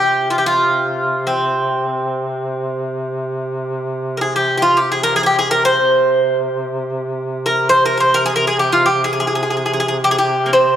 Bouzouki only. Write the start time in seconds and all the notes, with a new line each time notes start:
Already playing: G4
0.30 F4
0.38 G4
0.46 F4
1.27 C4
4.17 A#4
4.21 G#4
4.36 G4
4.58 G4
4.62 F4
4.77 G4
4.92 G#4
5.03 A#4
5.16 G#4
5.23 G4 G#4
5.39 G#4
5.51 A#4
5.65 C5
7.46 A#4
7.69 C5
7.86 A#4
7.98 A#4 C5
8.14 A#4
8.26 G#4
8.36 A#4
8.47 G#4
8.59 G4
8.72 F4
8.86 G4
9.04 G#4
9.13 G#4
9.20 G#4
9.27 G#4
9.35 G#4
9.43 G#4
9.50 G#4
9.57 G#4
9.66 G#4
9.73 G#4
9.80 G#4
9.88 G#4
10.04 G4
10.11 G#4
10.18 G4
10.46 A#3
10.53 C4